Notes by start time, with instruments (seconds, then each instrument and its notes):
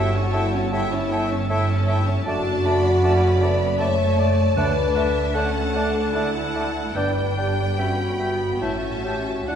Already playing: double bass section G1, cello section G2, bassoon A3, viola section E4, french horn section F#4, clarinet C#5, violin section E5 G5
0.13 viola section C#4, violin section C#5 A5
0.32 bassoon A3, viola section E4, clarinet C#5, violin section E5 G5, oboe E5, flute A5
0.53 viola section C#4, violin section C#5 A5
0.72 bassoon A3, french horn section E4, viola section E4, clarinet C#5, oboe E5, violin section E5 G5, flute A5
0.92 viola section C#4, violin section C#5 A5
1.11 bassoon A3, viola section E4, clarinet C#5, oboe E5, violin section E5 G5, flute A5
1.30 viola section C#4, violin section C#5 A5
1.49 bassoon A3, viola section E4, clarinet C#5, oboe E5, violin section E5 G5, flute A5
1.68 viola section C#4, violin section C#5 A5
1.87 bassoon A3, viola section E4, clarinet C#5, oboe E5, violin section E5 G5, flute A5
2.07 viola section C#4, violin section C#5 A5
2.26 double bass section F#1, cello section F#2, bassoon A3, viola section D4, french horn section F#4, violin section D5 A5, clarinet D5, oboe A5, flute A5
2.65 bassoon A3, clarinet D5, flute A5, oboe A5, violin section B5
3.03 bassoon A3, viola section C#4, clarinet D5, oboe A5, flute A5, violin section B5
3.41 bassoon A3, viola section B3, french horn section D5, clarinet D5, oboe A5, flute A5
3.78 viola section A3, bassoon A3, french horn section C#5, clarinet D5, violin section E5 A5, oboe A5, flute A5
4.17 bassoon A3, violin section D5, clarinet D5, oboe A5, flute A5
4.57 double bass section D2, cello section D2, timpani D3, bassoon A3, viola section D4, french horn section B4, clarinet D5, violin section D5, oboe F#5, flute A5
4.95 bassoon A3, clarinet D5, violin section E5, oboe F#5, flute A5
5.34 bassoon A3, viola section C#4, french horn section A4, clarinet D5, oboe F#5, violin section F#5 A5, flute A5
5.73 bassoon A3, viola section D4, clarinet D5, oboe F#5, flute A5
6.14 bassoon A3, viola section E4, clarinet D5, oboe F#5, violin section F#5, flute A5
6.54 bassoon A3, clarinet D5, oboe F#5, flute A5
6.95 double bass section G1, cello section G2, bassoon D4, viola section D4, french horn section B4, clarinet D5, flute G5, oboe G5, violin section G5
7.37 bassoon D4, french horn section G4, clarinet D5, flute G5, oboe G5
7.77 bassoon B3, viola section C#4, french horn section F#4, clarinet E5, flute G5, oboe G5, violin section B5
8.19 bassoon B3, viola section B3, clarinet E5, flute G5, oboe G5
8.60 double bass section A1, cello section A2, viola section C#4, bassoon C#4, french horn section E4, violin section E5 A5, clarinet E5, oboe G5, flute A5
8.83 french horn section F#4
9.03 bassoon C#4, french horn section G4, clarinet E5, oboe G5, flute A5
9.27 french horn section F#4
9.46 double bass section D2, cello section D3, viola section D4, bassoon D4, french horn section E4, clarinet F#5, oboe F#5, violin section F#5 A5, flute A5